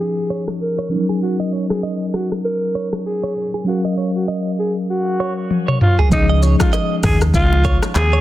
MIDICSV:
0, 0, Header, 1, 6, 480
1, 0, Start_track
1, 0, Key_signature, -5, "major"
1, 0, Tempo, 612245
1, 956, Time_signature, 4, 2, 24, 8
1, 6435, End_track
2, 0, Start_track
2, 0, Title_t, "Clean electric guitar"
2, 0, Program_c, 0, 27
2, 237, Note_on_c, 0, 73, 74
2, 337, Note_off_c, 0, 73, 0
2, 616, Note_on_c, 0, 73, 80
2, 688, Note_off_c, 0, 73, 0
2, 856, Note_on_c, 0, 68, 66
2, 928, Note_off_c, 0, 68, 0
2, 1095, Note_on_c, 0, 75, 70
2, 1196, Note_off_c, 0, 75, 0
2, 1196, Note_on_c, 0, 73, 73
2, 1296, Note_off_c, 0, 73, 0
2, 1436, Note_on_c, 0, 75, 79
2, 1609, Note_off_c, 0, 75, 0
2, 2157, Note_on_c, 0, 73, 76
2, 2257, Note_off_c, 0, 73, 0
2, 2536, Note_on_c, 0, 73, 79
2, 2608, Note_off_c, 0, 73, 0
2, 2776, Note_on_c, 0, 68, 69
2, 2848, Note_off_c, 0, 68, 0
2, 3016, Note_on_c, 0, 75, 69
2, 3088, Note_off_c, 0, 75, 0
2, 3117, Note_on_c, 0, 73, 73
2, 3217, Note_off_c, 0, 73, 0
2, 3356, Note_on_c, 0, 75, 81
2, 3529, Note_off_c, 0, 75, 0
2, 4077, Note_on_c, 0, 73, 71
2, 4177, Note_off_c, 0, 73, 0
2, 4456, Note_on_c, 0, 73, 80
2, 4528, Note_off_c, 0, 73, 0
2, 4696, Note_on_c, 0, 68, 66
2, 4768, Note_off_c, 0, 68, 0
2, 4935, Note_on_c, 0, 75, 76
2, 5036, Note_off_c, 0, 75, 0
2, 5036, Note_on_c, 0, 73, 76
2, 5136, Note_off_c, 0, 73, 0
2, 5276, Note_on_c, 0, 75, 87
2, 5449, Note_off_c, 0, 75, 0
2, 5996, Note_on_c, 0, 73, 80
2, 6096, Note_off_c, 0, 73, 0
2, 6376, Note_on_c, 0, 73, 85
2, 6435, Note_off_c, 0, 73, 0
2, 6435, End_track
3, 0, Start_track
3, 0, Title_t, "Alto saxophone"
3, 0, Program_c, 1, 65
3, 1, Note_on_c, 1, 68, 100
3, 355, Note_off_c, 1, 68, 0
3, 481, Note_on_c, 1, 70, 84
3, 835, Note_off_c, 1, 70, 0
3, 961, Note_on_c, 1, 66, 92
3, 1077, Note_off_c, 1, 66, 0
3, 1340, Note_on_c, 1, 68, 74
3, 1423, Note_off_c, 1, 68, 0
3, 1682, Note_on_c, 1, 66, 76
3, 1797, Note_off_c, 1, 66, 0
3, 1920, Note_on_c, 1, 70, 106
3, 2274, Note_off_c, 1, 70, 0
3, 2401, Note_on_c, 1, 68, 95
3, 2755, Note_off_c, 1, 68, 0
3, 2881, Note_on_c, 1, 66, 96
3, 2997, Note_off_c, 1, 66, 0
3, 3261, Note_on_c, 1, 66, 65
3, 3344, Note_off_c, 1, 66, 0
3, 3602, Note_on_c, 1, 68, 82
3, 3717, Note_off_c, 1, 68, 0
3, 3842, Note_on_c, 1, 66, 87
3, 4195, Note_off_c, 1, 66, 0
3, 4563, Note_on_c, 1, 65, 76
3, 4678, Note_off_c, 1, 65, 0
3, 4802, Note_on_c, 1, 63, 109
3, 4918, Note_off_c, 1, 63, 0
3, 5181, Note_on_c, 1, 65, 75
3, 5264, Note_off_c, 1, 65, 0
3, 5521, Note_on_c, 1, 68, 84
3, 5637, Note_off_c, 1, 68, 0
3, 5762, Note_on_c, 1, 65, 100
3, 6116, Note_off_c, 1, 65, 0
3, 6241, Note_on_c, 1, 68, 93
3, 6435, Note_off_c, 1, 68, 0
3, 6435, End_track
4, 0, Start_track
4, 0, Title_t, "Tine electric piano"
4, 0, Program_c, 2, 4
4, 0, Control_c, 2, 64, 127
4, 0, Note_on_c, 2, 53, 60
4, 0, Note_on_c, 2, 61, 56
4, 0, Note_on_c, 2, 63, 55
4, 0, Note_on_c, 2, 67, 52
4, 0, Note_on_c, 2, 68, 70
4, 675, Note_off_c, 2, 53, 0
4, 681, Note_off_c, 2, 61, 0
4, 688, Note_off_c, 2, 63, 0
4, 696, Note_on_c, 2, 53, 50
4, 709, Note_on_c, 2, 61, 58
4, 720, Note_off_c, 2, 68, 0
4, 722, Note_on_c, 2, 63, 56
4, 727, Control_c, 2, 64, 0
4, 728, Note_off_c, 2, 67, 0
4, 735, Note_on_c, 2, 70, 69
4, 747, Note_on_c, 2, 54, 64
4, 765, Note_off_c, 2, 53, 0
4, 851, Control_c, 2, 64, 127
4, 2601, Note_off_c, 2, 61, 0
4, 2607, Note_off_c, 2, 63, 0
4, 2614, Note_off_c, 2, 70, 0
4, 2620, Note_off_c, 2, 54, 0
4, 2856, Note_on_c, 2, 54, 60
4, 2868, Note_on_c, 2, 61, 57
4, 2882, Note_on_c, 2, 77, 57
4, 2885, Control_c, 2, 64, 0
4, 2895, Note_on_c, 2, 70, 66
4, 3020, Control_c, 2, 64, 127
4, 4754, Note_off_c, 2, 54, 0
4, 4761, Note_off_c, 2, 61, 0
4, 4767, Note_off_c, 2, 77, 0
4, 4774, Note_off_c, 2, 70, 0
4, 4777, Note_on_c, 2, 53, 64
4, 4786, Note_on_c, 2, 56, 62
4, 4796, Note_on_c, 2, 61, 62
4, 4805, Control_c, 2, 64, 0
4, 4806, Note_on_c, 2, 63, 61
4, 4816, Note_on_c, 2, 68, 73
4, 4924, Control_c, 2, 64, 127
4, 6435, Note_off_c, 2, 53, 0
4, 6435, Note_off_c, 2, 56, 0
4, 6435, Note_off_c, 2, 61, 0
4, 6435, Note_off_c, 2, 63, 0
4, 6435, Note_off_c, 2, 68, 0
4, 6435, End_track
5, 0, Start_track
5, 0, Title_t, "Fingered electric bass"
5, 0, Program_c, 3, 33
5, 4796, Note_on_c, 3, 37, 100
5, 5129, Note_off_c, 3, 37, 0
5, 5518, Note_on_c, 3, 39, 94
5, 5728, Note_off_c, 3, 39, 0
5, 5753, Note_on_c, 3, 37, 103
5, 6087, Note_off_c, 3, 37, 0
5, 6235, Note_on_c, 3, 39, 98
5, 6435, Note_off_c, 3, 39, 0
5, 6435, End_track
6, 0, Start_track
6, 0, Title_t, "Drums"
6, 0, Note_on_c, 9, 82, 69
6, 75, Note_off_c, 9, 82, 0
6, 235, Note_on_c, 9, 82, 52
6, 313, Note_off_c, 9, 82, 0
6, 375, Note_on_c, 9, 37, 93
6, 453, Note_off_c, 9, 37, 0
6, 474, Note_on_c, 9, 82, 81
6, 552, Note_off_c, 9, 82, 0
6, 718, Note_on_c, 9, 82, 60
6, 796, Note_off_c, 9, 82, 0
6, 854, Note_on_c, 9, 82, 75
6, 933, Note_off_c, 9, 82, 0
6, 957, Note_on_c, 9, 82, 70
6, 1035, Note_off_c, 9, 82, 0
6, 1199, Note_on_c, 9, 82, 51
6, 1277, Note_off_c, 9, 82, 0
6, 1335, Note_on_c, 9, 37, 111
6, 1336, Note_on_c, 9, 82, 75
6, 1413, Note_off_c, 9, 37, 0
6, 1414, Note_off_c, 9, 82, 0
6, 1437, Note_on_c, 9, 82, 71
6, 1516, Note_off_c, 9, 82, 0
6, 1674, Note_on_c, 9, 82, 53
6, 1677, Note_on_c, 9, 37, 89
6, 1753, Note_off_c, 9, 82, 0
6, 1755, Note_off_c, 9, 37, 0
6, 1815, Note_on_c, 9, 82, 67
6, 1818, Note_on_c, 9, 37, 87
6, 1893, Note_off_c, 9, 82, 0
6, 1896, Note_off_c, 9, 37, 0
6, 1916, Note_on_c, 9, 82, 72
6, 1994, Note_off_c, 9, 82, 0
6, 2155, Note_on_c, 9, 82, 51
6, 2233, Note_off_c, 9, 82, 0
6, 2295, Note_on_c, 9, 37, 91
6, 2296, Note_on_c, 9, 82, 63
6, 2373, Note_off_c, 9, 37, 0
6, 2375, Note_off_c, 9, 82, 0
6, 2394, Note_on_c, 9, 82, 78
6, 2473, Note_off_c, 9, 82, 0
6, 2637, Note_on_c, 9, 82, 59
6, 2715, Note_off_c, 9, 82, 0
6, 2774, Note_on_c, 9, 82, 70
6, 2853, Note_off_c, 9, 82, 0
6, 4316, Note_on_c, 9, 48, 59
6, 4395, Note_off_c, 9, 48, 0
6, 4455, Note_on_c, 9, 47, 59
6, 4533, Note_off_c, 9, 47, 0
6, 4556, Note_on_c, 9, 45, 91
6, 4634, Note_off_c, 9, 45, 0
6, 4695, Note_on_c, 9, 43, 92
6, 4774, Note_off_c, 9, 43, 0
6, 4795, Note_on_c, 9, 36, 115
6, 4796, Note_on_c, 9, 82, 77
6, 4804, Note_on_c, 9, 64, 77
6, 4874, Note_off_c, 9, 36, 0
6, 4874, Note_off_c, 9, 82, 0
6, 4882, Note_off_c, 9, 64, 0
6, 5038, Note_on_c, 9, 82, 56
6, 5040, Note_on_c, 9, 61, 59
6, 5116, Note_off_c, 9, 82, 0
6, 5118, Note_off_c, 9, 61, 0
6, 5174, Note_on_c, 9, 37, 123
6, 5175, Note_on_c, 9, 82, 85
6, 5176, Note_on_c, 9, 36, 99
6, 5179, Note_on_c, 9, 61, 81
6, 5252, Note_off_c, 9, 37, 0
6, 5254, Note_off_c, 9, 82, 0
6, 5255, Note_off_c, 9, 36, 0
6, 5258, Note_off_c, 9, 61, 0
6, 5277, Note_on_c, 9, 82, 76
6, 5284, Note_on_c, 9, 60, 89
6, 5356, Note_off_c, 9, 82, 0
6, 5363, Note_off_c, 9, 60, 0
6, 5514, Note_on_c, 9, 46, 76
6, 5514, Note_on_c, 9, 82, 55
6, 5515, Note_on_c, 9, 45, 96
6, 5516, Note_on_c, 9, 37, 95
6, 5518, Note_on_c, 9, 36, 104
6, 5592, Note_off_c, 9, 46, 0
6, 5592, Note_off_c, 9, 82, 0
6, 5594, Note_off_c, 9, 37, 0
6, 5594, Note_off_c, 9, 45, 0
6, 5596, Note_off_c, 9, 36, 0
6, 5654, Note_on_c, 9, 82, 73
6, 5657, Note_on_c, 9, 37, 95
6, 5660, Note_on_c, 9, 60, 58
6, 5732, Note_off_c, 9, 82, 0
6, 5735, Note_off_c, 9, 37, 0
6, 5739, Note_off_c, 9, 60, 0
6, 5753, Note_on_c, 9, 36, 103
6, 5755, Note_on_c, 9, 82, 76
6, 5761, Note_on_c, 9, 64, 87
6, 5831, Note_off_c, 9, 36, 0
6, 5833, Note_off_c, 9, 82, 0
6, 5839, Note_off_c, 9, 64, 0
6, 5901, Note_on_c, 9, 61, 74
6, 5980, Note_off_c, 9, 61, 0
6, 5994, Note_on_c, 9, 36, 97
6, 5994, Note_on_c, 9, 82, 58
6, 5998, Note_on_c, 9, 60, 53
6, 6072, Note_off_c, 9, 36, 0
6, 6072, Note_off_c, 9, 82, 0
6, 6076, Note_off_c, 9, 60, 0
6, 6135, Note_on_c, 9, 37, 96
6, 6136, Note_on_c, 9, 82, 68
6, 6137, Note_on_c, 9, 61, 75
6, 6213, Note_off_c, 9, 37, 0
6, 6215, Note_off_c, 9, 82, 0
6, 6216, Note_off_c, 9, 61, 0
6, 6234, Note_on_c, 9, 82, 92
6, 6236, Note_on_c, 9, 39, 90
6, 6237, Note_on_c, 9, 60, 83
6, 6312, Note_off_c, 9, 82, 0
6, 6315, Note_off_c, 9, 39, 0
6, 6316, Note_off_c, 9, 60, 0
6, 6435, End_track
0, 0, End_of_file